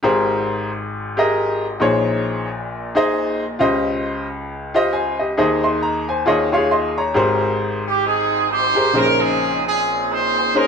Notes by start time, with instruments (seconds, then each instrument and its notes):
0.03 upright piano G#1 G#2 G4 G#4 A#4 C5
1.17 upright piano G4 G#4 A#4 D#5
1.80 upright piano A#1 A#2 D#4 G#4 C5 C#5
2.95 upright piano D#4 G#4 C5 D#5
3.59 upright piano C#2 C#3 F4 G4 C5 D#5
4.74 upright piano F4 G4 C5 D#5
4.93 upright piano C5 G#5
5.19 upright piano G4 D#5
5.37 upright piano D#2 D#3 D#4 G#4 C5 D#5
5.64 upright piano D#5 C6
5.83 upright piano A#5
6.09 upright piano C5 G#5
6.26 upright piano D#2 D#3 F4 G#4 C#5 D#5
6.52 upright piano F4 G4 C#5 F5
6.58 upright piano G#4
6.71 upright piano D#5 C6
6.98 upright piano C#5 A#5
7.14 upright piano G#1 G#2 G4 G#4 A#4 C5
7.88 horn section G4
8.05 horn section C4 D#4 G#4
8.50 horn section D#4 G4 C5
8.75 upright piano G4 G#4 A#4 C5
8.93 upright piano A#1 A#2 C#3 D#4 G#4 C5, horn section C#4 D#4 A#4
9.21 horn section C4 C#4 G#4
9.66 horn section C4 C#4 G#4
10.10 horn section D#4 G#4 C5
10.54 upright piano C#4 D#4 G#4 C5, horn section A#4